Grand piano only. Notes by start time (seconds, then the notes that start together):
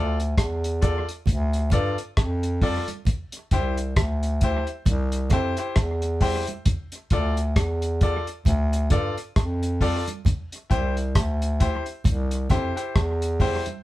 Already playing: F4 A4 D5
0.82 F4 A4 D5
1.72 F4 A4 D5
2.62 F4 A4 D5
3.52 E4 G4 C5
4.43 E4 G4 C5
5.32 E4 G4 C5
5.58 E4 G4 C5
6.21 E4 G4 C5
7.12 F4 A4 D5
8.02 F4 A4 D5
8.91 F4 A4 D5
9.81 F4 A4 D5
10.70 E4 G4 C5
11.60 E4 G4 C5
12.50 E4 G4 C5
12.76 E4 G4 C5
13.40 E4 G4 C5